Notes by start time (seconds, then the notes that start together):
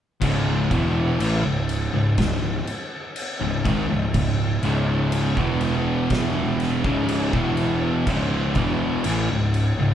0.20 C#1 C#2 G#2 C#3, kick, crash
0.69 E1 E2 B2 E3, kick, crash
1.19 A1 A2 E3, crash
1.43 C#1 C#2 G#2
1.69 crash
1.93 C#1 C#2 G#2
2.18 C#1 C#2 G#2, kick, snare, crash
2.67 crash
3.16 crash
3.41 C#1 C#2 G#2
3.65 G#1 G#2 D#3, kick, crash
3.89 C#1 C#2 G#2
4.14 C#1 C#2 G#2, kick, crash
4.63 C#1 C#2 G#2 C#3, crash
5.12 crash
5.37 E1 E2 B2 E3, kick
5.61 crash
6.10 kick, snare, crash
6.60 snare, crash
6.84 C#1 C#2 G#2 C#3, kick
7.08 crash
7.33 E1 E2 B2 E3, kick
7.57 crash
8.07 C#1 C#2 G#2 C#3, kick, crash
8.55 E1 E2 B2 E3, kick, crash
9.04 A1 A2 E3, crash
9.30 C#1 C#2 G#2
9.54 crash
9.78 C#1 C#2 G#2